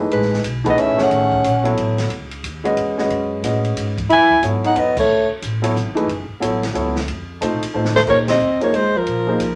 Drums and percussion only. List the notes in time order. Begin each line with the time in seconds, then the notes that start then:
0.11 ride
0.22 snare
0.34 snare
0.44 hi-hat pedal, ride
0.65 kick, ride
0.78 ride
0.98 snare
1.11 ride
1.32 kick
1.44 hi-hat pedal, ride
1.65 ride
1.77 ride
1.98 snare, ride
2.10 ride
2.31 ride
2.44 hi-hat pedal, ride
2.65 ride
2.77 ride
2.98 snare
3.10 ride
3.44 hi-hat pedal, ride
3.64 ride
3.77 hi-hat pedal, ride
3.98 kick, ride
4.10 ride
4.31 kick
4.43 hi-hat pedal, ride
4.64 ride
4.76 ride
4.97 kick, crash
5.42 hi-hat pedal, ride
5.63 ride
5.76 hi-hat pedal
5.97 ride
6.09 ride
6.42 hi-hat pedal, ride
6.63 snare, ride
6.75 ride
6.96 snare
7.08 ride
7.42 hi-hat pedal, ride
7.63 ride
7.85 snare
7.96 snare
8.07 kick, crash
8.28 snare, ride
8.40 hi-hat pedal
8.61 ride
8.74 ride
9.07 ride
9.40 hi-hat pedal, ride